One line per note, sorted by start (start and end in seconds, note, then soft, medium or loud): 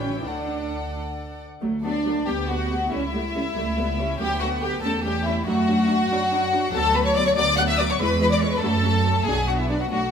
0.00 0.25 A1 medium
0.00 0.08 C#3 medium
0.00 0.14 C#4 medium
0.00 0.25 B4 medium
0.00 0.26 C#5 medium
0.00 0.25 G5 medium
0.14 0.25 E3 medium
0.14 0.26 E4 medium
0.24 1.42 D2 soft
0.24 0.93 D3 medium
0.24 0.94 D4 medium
0.24 1.42 A4 soft
0.24 1.40 D5 soft
0.24 1.42 F#5 soft
1.62 2.20 D2 medium
1.62 1.70 F#3 medium
1.62 1.70 A3 medium
1.62 1.83 A3 medium
1.84 1.92 F#3 soft
1.84 1.92 A3 soft
1.84 1.92 B3 medium
1.84 2.24 D4 medium
1.84 2.25 D5 medium
2.06 2.14 F#3 soft
2.06 2.27 A3 medium
2.06 2.14 A3 soft
2.26 2.85 D2 medium
2.26 2.36 G3 medium
2.26 2.35 B3 medium
2.26 2.91 B3 medium
2.26 2.49 G4 medium
2.26 2.36 G5 medium
2.48 2.57 G3 soft
2.48 2.57 B3 soft
2.48 2.92 F#4 medium
2.48 2.91 F#5 medium
2.71 2.79 G3 soft
2.71 2.79 B3 soft
2.91 3.49 C#2 medium
2.91 3.00 G3 medium
2.91 3.00 A3 medium
2.91 3.00 C#4 medium
2.91 4.17 E4 medium
2.91 4.18 E5 medium
3.14 3.22 G3 soft
3.14 3.22 A3 medium
3.14 3.22 A3 soft
3.35 3.43 G3 soft
3.35 3.43 A3 soft
3.35 3.43 C#4 medium
3.56 4.13 C#2 medium
3.56 3.64 G3 medium
3.56 3.64 A3 medium
3.56 3.77 A3 medium
3.77 3.85 G3 medium
3.77 3.85 A3 medium
3.77 3.99 B3 medium
3.98 4.06 G3 soft
3.98 4.07 A3 medium
3.98 4.20 C#4 medium
4.19 4.76 D2 medium
4.19 4.28 F#3 medium
4.19 4.28 A3 medium
4.19 4.84 B3 medium
4.19 4.40 G4 medium
4.19 4.41 G5 medium
4.40 4.49 F#3 medium
4.40 4.49 A3 medium
4.40 4.48 F#4 medium
4.40 4.62 F#5 medium
4.61 4.70 F#3 medium
4.61 4.70 A3 medium
4.61 4.83 G4 medium
4.61 4.83 G5 medium
4.83 5.39 E2 medium
4.83 4.92 G3 medium
4.83 5.45 A3 medium
4.83 4.92 C#4 medium
4.83 5.04 A4 medium
4.83 4.91 A5 medium
5.04 5.13 G3 medium
5.04 5.13 C#4 medium
5.04 5.25 G4 medium
5.04 5.25 G5 medium
5.25 5.35 G3 medium
5.25 5.34 C#4 medium
5.25 5.47 E4 medium
5.25 5.35 E5 medium
5.46 6.04 F#2 medium
5.46 5.55 F#3 medium
5.46 6.10 A3 medium
5.46 5.55 D4 medium
5.46 6.72 F#4 loud
5.46 6.72 F#5 medium
5.69 5.77 F#3 medium
5.69 5.77 D4 medium
5.89 5.97 F#3 medium
5.89 5.97 D4 medium
6.11 6.67 F#2 medium
6.11 7.97 F#3 medium
6.11 6.19 F#3 medium
6.11 6.19 D4 medium
6.33 6.41 F#3 medium
6.33 6.41 D4 medium
6.53 6.61 F#3 medium
6.53 6.61 D4 medium
6.74 7.30 D2 medium
6.74 6.82 F#3 medium
6.74 6.82 B3 medium
6.74 6.95 A4 loud
6.74 6.96 A5 loud
6.95 7.03 F#3 medium
6.95 7.03 B3 medium
6.95 7.06 B4 medium
6.95 7.06 B5 medium
7.05 7.16 C#5 medium
7.05 7.10 C#6 medium
7.15 7.25 F#3 medium
7.15 7.25 B3 medium
7.15 7.26 D5 loud
7.15 7.26 D6 medium
7.26 7.31 C#5 loud
7.26 7.30 C#6 medium
7.36 7.93 D2 medium
7.36 7.45 F#3 medium
7.36 7.45 B3 medium
7.36 7.57 D5 loud
7.36 7.57 D6 loud
7.57 7.66 F#3 medium
7.57 7.66 B3 medium
7.57 7.61 F#5 loud
7.57 7.62 F#6 medium
7.68 7.79 E5 loud
7.68 7.79 E6 medium
7.78 7.87 F#3 medium
7.78 7.87 B3 medium
7.78 7.82 D5 loud
7.78 7.90 D6 medium
7.89 7.94 C#5 loud
7.89 8.01 C#6 medium
8.00 8.55 E2 medium
8.00 8.61 G#3 medium
8.00 8.09 G#3 medium
8.00 8.09 E4 medium
8.00 8.20 B4 loud
8.00 8.21 B5 loud
8.21 8.29 G#3 medium
8.21 8.29 E4 medium
8.21 8.31 B4 loud
8.21 8.26 B5 medium
8.31 8.41 D5 medium
8.31 8.36 D6 medium
8.40 8.50 G#3 medium
8.40 8.50 E4 medium
8.40 8.51 C#5 medium
8.40 8.52 C#6 medium
8.50 8.61 B4 loud
8.50 8.63 B5 medium
8.61 9.19 F#2 medium
8.61 8.71 F#3 medium
8.61 9.25 A3 medium
8.61 8.71 C#4 medium
8.61 9.25 A4 loud
8.61 9.27 A5 medium
8.84 8.92 F#3 medium
8.84 8.92 C#4 medium
9.05 9.13 F#3 medium
9.05 9.13 C#4 medium
9.25 9.84 B1 medium
9.25 9.35 F#3 medium
9.25 9.92 B3 medium
9.25 9.35 D4 medium
9.25 9.47 G#4 loud
9.25 9.48 G#5 loud
9.48 9.57 F#3 medium
9.48 9.57 D4 medium
9.48 9.59 F#4 medium
9.48 9.52 F#5 medium
9.58 9.69 E4 medium
9.58 9.70 E5 medium
9.69 9.79 F#3 medium
9.69 9.73 D4 medium
9.69 9.79 D4 medium
9.69 9.80 D5 medium
9.81 9.90 F#4 medium
9.81 9.91 F#5 medium
9.91 10.11 B1 medium
9.91 10.00 F#3 medium
9.91 10.11 A3 medium
9.91 10.00 D4 medium
9.91 10.11 F#4 medium
9.91 10.11 F#5 medium